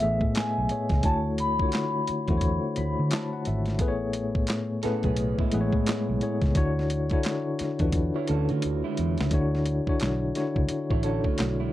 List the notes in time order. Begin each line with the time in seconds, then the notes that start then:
Already playing: B3 G#4 C#5 D#5 E5
0.00 A1 A2 A3 B3 G#4 E5, closed hi-hat
0.21 A2, kick
0.35 G#5, muted fingered electric bass stroke, snare, clap, closed hi-hat
0.58 B1
0.69 A2 A3 B3 G#4 C#5, closed hi-hat
0.89 C#2, kick, snare, closed hi-hat
1.03 D2 D3 A3 E4 F#4 C#5 A5, kick, closed hi-hat
1.38 B5, closed hi-hat
1.59 D3 A3 E4 F4 C#5, kick
1.68 F#4, closed hi-hat
1.74 snare, clap
2.07 muted fingered electric bass stroke, closed hi-hat
2.28 E2 D3 A3 E4 F#4 C5, kick, closed hi-hat
2.37 C#5, kick, closed hi-hat
2.76 D2 B5, closed hi-hat
2.99 D3
3.11 A5, snare, clap, closed hi-hat
3.33 F#5
3.45 G#1 E5, closed hi-hat
3.66 snare, closed hi-hat
3.79 A1 A2 A3 B3 G#4 B4, kick, closed hi-hat
3.88 C#5
4.13 closed hi-hat
4.35 kick
4.47 snare, clap, closed hi-hat
4.83 A2 A3 B3 C#4 G#4 A4 B4, muted fingered electric bass stroke, snare, closed hi-hat
5.03 B1 B3 G#4, kick, closed hi-hat
5.17 closed hi-hat
5.39 G#3 E4, kick
5.52 A1 A2 G#3 B3 G#4 B4, closed hi-hat
5.61 C#5
5.73 A2, kick
5.86 muted fingered electric bass stroke, snare, clap, closed hi-hat
6.09 B1
6.21 A2 A3 B3 G#4 C#5, closed hi-hat
6.42 C#2, kick, snare, closed hi-hat
6.55 D2 D3 D4 E4 F#4 C#5, kick, closed hi-hat
6.79 snare
6.90 closed hi-hat
7.10 D3 D4 E4 F#4 C#5, kick, closed hi-hat
7.23 snare, clap, closed hi-hat
7.59 muted fingered electric bass stroke, snare, closed hi-hat
7.79 E2 D3 D4 E4 F4 B4, kick, closed hi-hat
7.88 F#4
7.92 kick, closed hi-hat
8.16 E4 C#5
8.28 D2 C#4 A4, closed hi-hat
8.49 D3 A3 F#4, closed hi-hat
8.62 D2, closed hi-hat
8.84 G#3 E4
8.97 E2, closed hi-hat
9.18 C#2, snare, closed hi-hat
9.31 D2 D3 D4 E4 F#4 C#5, kick, closed hi-hat
9.55 snare
9.66 closed hi-hat
9.87 D3 D4 E4 F#4 C#5, kick
10.00 B1, snare, clap, closed hi-hat
10.35 D3 D4 E4 F#4 C#5, snare, closed hi-hat
10.56 C#2, kick
10.69 muted fingered electric bass stroke, closed hi-hat
10.90 A1 E4 C#5, kick
11.03 D3 C#4 D4 E4 F#4 A4 C#5, closed hi-hat
11.24 A3 F#4, kick
11.38 B1, snare, clap, closed hi-hat
11.60 G#3 E4